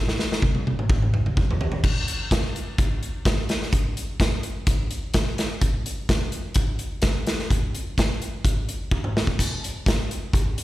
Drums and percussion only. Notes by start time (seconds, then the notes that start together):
0.08 snare
0.19 snare
0.32 snare
0.42 kick, high tom
0.55 high tom
0.67 high tom
0.79 mid tom
0.90 kick, mid tom
1.02 mid tom
1.14 mid tom
1.26 mid tom
1.37 kick, mid tom
1.51 floor tom
1.61 floor tom
1.72 floor tom
1.84 kick, crash
2.08 closed hi-hat
2.31 kick, snare, closed hi-hat
2.56 closed hi-hat
2.78 kick, closed hi-hat
3.03 closed hi-hat
3.25 kick, snare, closed hi-hat
3.49 snare, closed hi-hat
3.62 snare
3.73 kick, closed hi-hat
3.97 closed hi-hat
4.20 kick, snare, closed hi-hat
4.43 closed hi-hat
4.67 kick, closed hi-hat
4.91 closed hi-hat
5.14 kick, snare, closed hi-hat
5.38 snare, closed hi-hat
5.61 kick, closed hi-hat
5.86 closed hi-hat
6.09 kick, snare, closed hi-hat
6.32 closed hi-hat
6.54 kick, closed hi-hat
6.79 closed hi-hat
7.02 kick, snare, closed hi-hat
7.27 snare, closed hi-hat
7.39 snare
7.50 kick, closed hi-hat
7.75 closed hi-hat
7.98 kick, snare, closed hi-hat
8.22 closed hi-hat
8.45 kick, closed hi-hat
8.69 closed hi-hat
8.91 kick
9.04 mid tom
9.17 snare
9.27 kick
9.39 kick, closed hi-hat, splash
9.64 closed hi-hat
9.86 kick, snare, closed hi-hat
10.11 closed hi-hat
10.33 kick, closed hi-hat
10.58 closed hi-hat